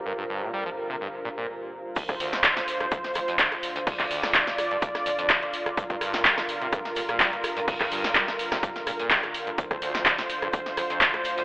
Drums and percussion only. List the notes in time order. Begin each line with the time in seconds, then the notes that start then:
1.96 kick, closed hi-hat, crash, shaker
2.09 kick, cross-stick, closed hi-hat
2.20 open hi-hat, shaker
2.33 snare, closed hi-hat
2.43 kick, cross-stick, snare, clap, closed hi-hat, shaker
2.57 snare, closed hi-hat
2.68 open hi-hat, shaker
2.80 cross-stick, closed hi-hat
2.92 kick, closed hi-hat, shaker
3.04 snare, closed hi-hat
3.14 cross-stick, open hi-hat, shaker
3.28 closed hi-hat
3.39 kick, snare, clap, closed hi-hat, shaker
3.52 cross-stick, closed hi-hat
3.63 open hi-hat, shaker
3.76 closed hi-hat
3.87 kick, cross-stick, closed hi-hat, open hi-hat
3.99 kick, clap, closed hi-hat
4.11 open hi-hat, shaker
4.23 cross-stick, snare, closed hi-hat
4.34 kick, snare, clap, closed hi-hat, shaker
4.47 snare, closed hi-hat
4.58 cross-stick, open hi-hat, shaker
4.71 closed hi-hat
4.82 kick, closed hi-hat, shaker
4.95 cross-stick, snare, closed hi-hat
5.06 open hi-hat, shaker
5.18 closed hi-hat
5.30 kick, cross-stick, snare, clap, closed hi-hat, shaker
5.42 closed hi-hat
5.53 open hi-hat, shaker
5.66 cross-stick, closed hi-hat
5.77 kick, closed hi-hat, shaker
5.90 kick, closed hi-hat
6.01 cross-stick, open hi-hat, shaker
6.14 snare, closed hi-hat
6.25 kick, snare, clap, closed hi-hat, shaker
6.38 cross-stick, snare, closed hi-hat
6.49 open hi-hat, shaker
6.61 closed hi-hat
6.73 kick, cross-stick, closed hi-hat, shaker
6.85 snare, closed hi-hat
6.96 open hi-hat, shaker
7.08 cross-stick, closed hi-hat
7.20 kick, snare, clap, closed hi-hat, shaker
7.33 closed hi-hat
7.44 cross-stick, open hi-hat, shaker
7.56 closed hi-hat
7.68 kick, closed hi-hat, open hi-hat
7.80 kick, cross-stick, clap, closed hi-hat
7.92 open hi-hat, shaker
8.04 snare, closed hi-hat
8.15 kick, cross-stick, snare, clap, closed hi-hat, shaker
8.28 snare, closed hi-hat
8.39 open hi-hat, shaker
8.52 cross-stick, snare, closed hi-hat
8.63 kick, closed hi-hat, shaker
8.76 snare, closed hi-hat
8.87 cross-stick, open hi-hat, shaker
8.99 closed hi-hat
9.11 kick, snare, clap, closed hi-hat, shaker
9.23 cross-stick, closed hi-hat
9.34 open hi-hat, shaker
9.47 closed hi-hat
9.58 kick, closed hi-hat, shaker
9.71 kick, cross-stick, closed hi-hat
9.82 open hi-hat, shaker
9.95 snare, closed hi-hat
10.05 kick, cross-stick, snare, clap, closed hi-hat, shaker
10.18 snare, closed hi-hat
10.29 open hi-hat, shaker
10.42 cross-stick, closed hi-hat
10.53 kick, closed hi-hat, shaker
10.66 snare, closed hi-hat
10.77 cross-stick, open hi-hat, shaker
10.90 closed hi-hat
11.01 kick, snare, clap, closed hi-hat, shaker
11.14 cross-stick, closed hi-hat
11.24 open hi-hat, shaker
11.38 closed hi-hat